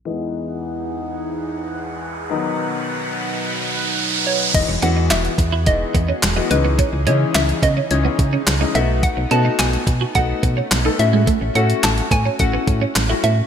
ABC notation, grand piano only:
X:1
M:4/4
L:1/16
Q:1/4=107
K:E
V:1 name="Grand piano"
[E,G,B,D]16 | [D,F,B,D]16 | [E,G,B,D] z [E,G,B,F]3 z3 [E,G,B,D]3 z2 [E,G,B,F] [E,G,CD]2- | [E,G,CD] z [E,G,CD]3 z3 [E,G,CD]3 z2 [E,G,CD] [A,B,DF]2- |
[A,B,DF] z [A,B,DF]3 z3 [A,B,DF]3 z2 [A,B,DA] [A,CEF]2- | [A,CEF] z [A,CEF]3 z3 [A,CEF]3 z2 [A,CEF]2 z |]